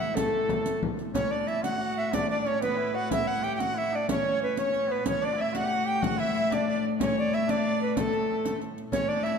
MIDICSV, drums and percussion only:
0, 0, Header, 1, 3, 480
1, 0, Start_track
1, 0, Tempo, 326975
1, 241, Time_signature, 6, 3, 24, 8
1, 6959, Tempo, 321888
1, 13885, End_track
2, 0, Start_track
2, 0, Title_t, "Frame drum"
2, 6, Note_on_c, 9, 64, 26
2, 153, Note_off_c, 9, 64, 0
2, 247, Note_on_c, 9, 64, 85
2, 394, Note_off_c, 9, 64, 0
2, 490, Note_on_c, 9, 64, 26
2, 637, Note_off_c, 9, 64, 0
2, 720, Note_on_c, 9, 64, 89
2, 867, Note_off_c, 9, 64, 0
2, 1212, Note_on_c, 9, 64, 87
2, 1359, Note_off_c, 9, 64, 0
2, 1446, Note_on_c, 9, 64, 27
2, 1593, Note_off_c, 9, 64, 0
2, 1682, Note_on_c, 9, 64, 86
2, 1829, Note_off_c, 9, 64, 0
2, 1935, Note_on_c, 9, 64, 25
2, 2081, Note_off_c, 9, 64, 0
2, 2405, Note_on_c, 9, 64, 69
2, 2552, Note_off_c, 9, 64, 0
2, 3133, Note_on_c, 9, 64, 84
2, 3280, Note_off_c, 9, 64, 0
2, 3368, Note_on_c, 9, 64, 27
2, 3515, Note_off_c, 9, 64, 0
2, 3854, Note_on_c, 9, 64, 65
2, 4000, Note_off_c, 9, 64, 0
2, 4568, Note_on_c, 9, 64, 85
2, 4715, Note_off_c, 9, 64, 0
2, 4816, Note_on_c, 9, 64, 26
2, 4963, Note_off_c, 9, 64, 0
2, 5284, Note_on_c, 9, 64, 64
2, 5430, Note_off_c, 9, 64, 0
2, 6000, Note_on_c, 9, 64, 87
2, 6147, Note_off_c, 9, 64, 0
2, 6722, Note_on_c, 9, 64, 62
2, 6868, Note_off_c, 9, 64, 0
2, 6964, Note_on_c, 9, 64, 28
2, 7113, Note_off_c, 9, 64, 0
2, 7210, Note_on_c, 9, 64, 28
2, 7359, Note_off_c, 9, 64, 0
2, 7441, Note_on_c, 9, 64, 79
2, 7590, Note_off_c, 9, 64, 0
2, 7685, Note_on_c, 9, 64, 26
2, 7834, Note_off_c, 9, 64, 0
2, 8169, Note_on_c, 9, 64, 64
2, 8318, Note_off_c, 9, 64, 0
2, 8877, Note_on_c, 9, 64, 90
2, 9026, Note_off_c, 9, 64, 0
2, 9130, Note_on_c, 9, 64, 25
2, 9279, Note_off_c, 9, 64, 0
2, 9607, Note_on_c, 9, 64, 70
2, 9757, Note_off_c, 9, 64, 0
2, 10332, Note_on_c, 9, 64, 96
2, 10481, Note_off_c, 9, 64, 0
2, 10579, Note_on_c, 9, 64, 26
2, 10728, Note_off_c, 9, 64, 0
2, 11056, Note_on_c, 9, 64, 66
2, 11205, Note_off_c, 9, 64, 0
2, 11773, Note_on_c, 9, 64, 86
2, 11922, Note_off_c, 9, 64, 0
2, 12493, Note_on_c, 9, 64, 74
2, 12642, Note_off_c, 9, 64, 0
2, 12729, Note_on_c, 9, 64, 30
2, 12878, Note_off_c, 9, 64, 0
2, 12962, Note_on_c, 9, 64, 30
2, 13111, Note_off_c, 9, 64, 0
2, 13194, Note_on_c, 9, 64, 86
2, 13343, Note_off_c, 9, 64, 0
2, 13435, Note_on_c, 9, 64, 27
2, 13584, Note_off_c, 9, 64, 0
2, 13885, End_track
3, 0, Start_track
3, 0, Title_t, "Riq"
3, 245, Note_on_c, 9, 54, 73
3, 392, Note_off_c, 9, 54, 0
3, 729, Note_on_c, 9, 54, 20
3, 876, Note_off_c, 9, 54, 0
3, 965, Note_on_c, 9, 54, 54
3, 1112, Note_off_c, 9, 54, 0
3, 1451, Note_on_c, 9, 54, 21
3, 1598, Note_off_c, 9, 54, 0
3, 1691, Note_on_c, 9, 54, 66
3, 1838, Note_off_c, 9, 54, 0
3, 2176, Note_on_c, 9, 54, 20
3, 2323, Note_off_c, 9, 54, 0
3, 2409, Note_on_c, 9, 54, 49
3, 2555, Note_off_c, 9, 54, 0
3, 3133, Note_on_c, 9, 54, 65
3, 3279, Note_off_c, 9, 54, 0
3, 3615, Note_on_c, 9, 54, 20
3, 3761, Note_off_c, 9, 54, 0
3, 3851, Note_on_c, 9, 54, 51
3, 3998, Note_off_c, 9, 54, 0
3, 4574, Note_on_c, 9, 54, 66
3, 4721, Note_off_c, 9, 54, 0
3, 5051, Note_on_c, 9, 54, 22
3, 5197, Note_off_c, 9, 54, 0
3, 5290, Note_on_c, 9, 54, 52
3, 5436, Note_off_c, 9, 54, 0
3, 6006, Note_on_c, 9, 54, 69
3, 6152, Note_off_c, 9, 54, 0
3, 6713, Note_on_c, 9, 54, 53
3, 6860, Note_off_c, 9, 54, 0
3, 6956, Note_on_c, 9, 54, 20
3, 7105, Note_off_c, 9, 54, 0
3, 7431, Note_on_c, 9, 54, 72
3, 7580, Note_off_c, 9, 54, 0
3, 8162, Note_on_c, 9, 54, 51
3, 8311, Note_off_c, 9, 54, 0
3, 8896, Note_on_c, 9, 54, 59
3, 9045, Note_off_c, 9, 54, 0
3, 9390, Note_on_c, 9, 54, 19
3, 9540, Note_off_c, 9, 54, 0
3, 9616, Note_on_c, 9, 54, 47
3, 9765, Note_off_c, 9, 54, 0
3, 10342, Note_on_c, 9, 54, 71
3, 10491, Note_off_c, 9, 54, 0
3, 10825, Note_on_c, 9, 54, 21
3, 10974, Note_off_c, 9, 54, 0
3, 11061, Note_on_c, 9, 54, 48
3, 11210, Note_off_c, 9, 54, 0
3, 11774, Note_on_c, 9, 54, 66
3, 11923, Note_off_c, 9, 54, 0
3, 12009, Note_on_c, 9, 54, 21
3, 12159, Note_off_c, 9, 54, 0
3, 12499, Note_on_c, 9, 54, 51
3, 12648, Note_off_c, 9, 54, 0
3, 12735, Note_on_c, 9, 54, 21
3, 12884, Note_off_c, 9, 54, 0
3, 12981, Note_on_c, 9, 54, 22
3, 13130, Note_off_c, 9, 54, 0
3, 13210, Note_on_c, 9, 54, 67
3, 13359, Note_off_c, 9, 54, 0
3, 13696, Note_on_c, 9, 54, 21
3, 13845, Note_off_c, 9, 54, 0
3, 13885, End_track
0, 0, End_of_file